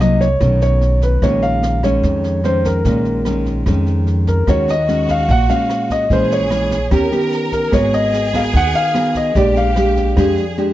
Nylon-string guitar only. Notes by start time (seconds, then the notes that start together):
Already playing: C3
0.00 F#3 A#3 D#4
0.41 B2 D#3 A3 C#4
1.22 A#2 D#3 G#3 C#4
1.84 D#3 G#3 C#4
2.04 F2
2.44 D#3 G#3 C#4
2.85 A#2 D#3 G#3 C#4
3.26 D#3 G#3 C#4
3.67 F2 D#3 G#3 C#4
4.48 D#3 G#3 C#4 F#4
4.88 G#3 C#4 F#4
5.28 A#2
5.48 G#3 C#4 F#4
6.11 A#2 E3 G#3 C#4
6.50 E3 G#3 C#4
6.91 D#3 B3 C#4 G4
7.12 B3 C#4 G4
7.72 G#3 B3 F#4 A#4
8.34 B3 F#4 A#4
8.53 D#3
8.95 B3 F#4 A#4
9.35 A#2 G#3 D4 G4
9.76 G#3 D4 G4
10.16 F2 G#3 D4 G4
10.58 G#3 D4 G4